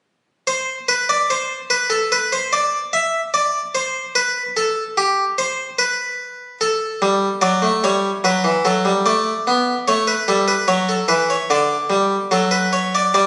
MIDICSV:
0, 0, Header, 1, 2, 480
1, 0, Start_track
1, 0, Tempo, 820793
1, 30, Time_signature, 4, 2, 24, 8
1, 3390, Tempo, 814111
1, 7794, End_track
2, 0, Start_track
2, 0, Title_t, "Harpsichord"
2, 0, Program_c, 0, 6
2, 277, Note_on_c, 0, 72, 61
2, 425, Note_off_c, 0, 72, 0
2, 517, Note_on_c, 0, 71, 63
2, 632, Note_off_c, 0, 71, 0
2, 639, Note_on_c, 0, 74, 59
2, 753, Note_off_c, 0, 74, 0
2, 762, Note_on_c, 0, 72, 58
2, 908, Note_off_c, 0, 72, 0
2, 995, Note_on_c, 0, 71, 58
2, 1110, Note_on_c, 0, 69, 63
2, 1111, Note_off_c, 0, 71, 0
2, 1229, Note_off_c, 0, 69, 0
2, 1240, Note_on_c, 0, 71, 65
2, 1354, Note_off_c, 0, 71, 0
2, 1360, Note_on_c, 0, 72, 52
2, 1474, Note_off_c, 0, 72, 0
2, 1478, Note_on_c, 0, 74, 61
2, 1626, Note_off_c, 0, 74, 0
2, 1715, Note_on_c, 0, 76, 65
2, 1863, Note_off_c, 0, 76, 0
2, 1953, Note_on_c, 0, 74, 67
2, 2101, Note_off_c, 0, 74, 0
2, 2191, Note_on_c, 0, 72, 64
2, 2340, Note_off_c, 0, 72, 0
2, 2429, Note_on_c, 0, 71, 74
2, 2579, Note_off_c, 0, 71, 0
2, 2670, Note_on_c, 0, 69, 63
2, 2819, Note_off_c, 0, 69, 0
2, 2909, Note_on_c, 0, 67, 63
2, 3058, Note_off_c, 0, 67, 0
2, 3148, Note_on_c, 0, 72, 68
2, 3297, Note_off_c, 0, 72, 0
2, 3383, Note_on_c, 0, 71, 58
2, 3852, Note_off_c, 0, 71, 0
2, 3869, Note_on_c, 0, 69, 58
2, 4111, Note_on_c, 0, 55, 63
2, 4259, Note_off_c, 0, 55, 0
2, 4335, Note_off_c, 0, 69, 0
2, 4344, Note_on_c, 0, 74, 60
2, 4345, Note_on_c, 0, 54, 79
2, 4464, Note_off_c, 0, 54, 0
2, 4466, Note_on_c, 0, 57, 74
2, 4495, Note_off_c, 0, 74, 0
2, 4585, Note_off_c, 0, 57, 0
2, 4593, Note_on_c, 0, 55, 72
2, 4594, Note_on_c, 0, 73, 56
2, 4742, Note_off_c, 0, 55, 0
2, 4742, Note_off_c, 0, 73, 0
2, 4831, Note_on_c, 0, 54, 78
2, 4835, Note_on_c, 0, 71, 63
2, 4948, Note_off_c, 0, 54, 0
2, 4949, Note_on_c, 0, 52, 73
2, 4983, Note_off_c, 0, 71, 0
2, 5067, Note_off_c, 0, 52, 0
2, 5071, Note_on_c, 0, 69, 64
2, 5072, Note_on_c, 0, 54, 71
2, 5188, Note_off_c, 0, 54, 0
2, 5190, Note_on_c, 0, 55, 66
2, 5220, Note_off_c, 0, 69, 0
2, 5307, Note_off_c, 0, 55, 0
2, 5312, Note_on_c, 0, 74, 58
2, 5313, Note_on_c, 0, 57, 77
2, 5462, Note_off_c, 0, 57, 0
2, 5557, Note_on_c, 0, 59, 67
2, 5705, Note_off_c, 0, 59, 0
2, 5779, Note_off_c, 0, 74, 0
2, 5795, Note_on_c, 0, 73, 70
2, 5799, Note_on_c, 0, 57, 82
2, 5911, Note_off_c, 0, 73, 0
2, 5912, Note_on_c, 0, 71, 57
2, 5946, Note_off_c, 0, 57, 0
2, 6029, Note_off_c, 0, 71, 0
2, 6034, Note_on_c, 0, 69, 56
2, 6035, Note_on_c, 0, 55, 74
2, 6150, Note_off_c, 0, 69, 0
2, 6150, Note_on_c, 0, 71, 58
2, 6184, Note_off_c, 0, 55, 0
2, 6268, Note_off_c, 0, 71, 0
2, 6269, Note_on_c, 0, 54, 79
2, 6269, Note_on_c, 0, 73, 67
2, 6387, Note_off_c, 0, 73, 0
2, 6392, Note_on_c, 0, 69, 60
2, 6418, Note_off_c, 0, 54, 0
2, 6506, Note_on_c, 0, 52, 78
2, 6507, Note_on_c, 0, 71, 61
2, 6508, Note_off_c, 0, 69, 0
2, 6626, Note_off_c, 0, 71, 0
2, 6635, Note_on_c, 0, 73, 55
2, 6656, Note_off_c, 0, 52, 0
2, 6749, Note_off_c, 0, 73, 0
2, 6754, Note_on_c, 0, 50, 76
2, 6756, Note_on_c, 0, 74, 63
2, 6901, Note_off_c, 0, 50, 0
2, 6987, Note_on_c, 0, 55, 82
2, 7136, Note_off_c, 0, 55, 0
2, 7217, Note_off_c, 0, 74, 0
2, 7232, Note_on_c, 0, 54, 75
2, 7234, Note_on_c, 0, 69, 66
2, 7348, Note_off_c, 0, 69, 0
2, 7349, Note_on_c, 0, 71, 64
2, 7465, Note_off_c, 0, 71, 0
2, 7476, Note_on_c, 0, 73, 57
2, 7589, Note_off_c, 0, 73, 0
2, 7606, Note_on_c, 0, 74, 56
2, 7697, Note_off_c, 0, 54, 0
2, 7715, Note_off_c, 0, 74, 0
2, 7721, Note_on_c, 0, 55, 75
2, 7722, Note_on_c, 0, 74, 64
2, 7794, Note_off_c, 0, 55, 0
2, 7794, Note_off_c, 0, 74, 0
2, 7794, End_track
0, 0, End_of_file